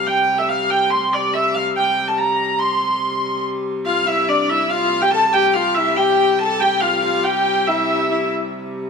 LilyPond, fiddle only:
\new Staff \with { instrumentName = "Fiddle" } { \time 3/4 \key c \major \tempo 4 = 142 r2. | r2. | r2. | f'8 e'8 d'8 e'8 f'8. g'16 |
a'8 g'8 f'8 e'8 g'4 | a'8 g'8 f'8 f'8 g'4 | e'4 e'8 r4. | }